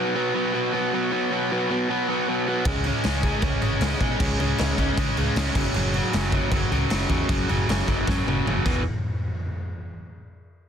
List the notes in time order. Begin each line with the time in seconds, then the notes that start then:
Already playing: B2 F#3 B3
0.15 B2 F#3 B3
0.34 B2 F#3 B3
0.53 B2 F#3 B3
0.73 B2 F#3 B3
0.92 B2 F#3 B3
1.11 B2 F#3 B3
1.31 B2 F#3 B3
1.51 B2 F#3 B3
1.70 B2 F#3 B3
1.89 B2 F#3 B3
2.08 B2 F#3 B3
2.28 B2 F#3 B3
2.47 B2 F#3 B3
2.65 C#2 C#3 G#3 C#4, kick, crash
2.84 C#3 G#3 C#4, crash
3.04 C#2 C#3 G#3 C#4, snare, crash
3.23 C#3 G#3 C#4, kick, crash
3.42 C#2 C#3 G#3 C#4, kick, crash
3.62 G#1 C#3 G#3 C#4, crash
3.81 C#2 C#3 G#3 C#4, snare, crash
4.00 B2 C#3 G#3 C#4, kick, crash
4.20 C#2 C#3 G#3 C#4, kick, crash
4.39 C#2 C#3 G#3 C#4, crash
4.58 C#2 C#3 G#3 C#4, snare, crash
4.78 C#2 C#3 G#3 C#4, kick, crash
4.97 C#3 G#3 C#4, kick, crash
5.17 C#2 C#3 G#3 C#4, crash
5.36 C#2 C#3 G#3 C#4, snare, crash
5.55 F#1 F#2 C#3 F#3, kick, crash
5.74 F#1 F#2 C#3 F#3, crash
5.94 F#2 C#3 F#3, crash
6.13 F#1 F#2 C#3 F#3, snare, crash
6.32 F#2 C#3 F#3, kick, crash
6.51 F#1 F#2 C#3 F#3, kick, crash
6.72 C#2 F#2 C#3 F#3, crash
6.90 F#1 F#2 C#3 F#3, snare, crash
7.09 E2 F#2 C#3 F#3, kick, crash
7.29 F#1 F#2 C#3 F#3, kick, crash
7.49 F#1 F#2 C#3 F#3, crash
7.69 F#1 F#2 C#3 F#3, snare, crash
7.88 F#1 F#2 C#3 F#3, kick, crash
8.07 F#2 C#3 F#3, kick, snare
8.26 F#1 F#2 C#3 F#3, high tom
8.46 F#1 F#2 C#3 F#3, mid tom
8.65 E1 E2 B2 E3, kick, crash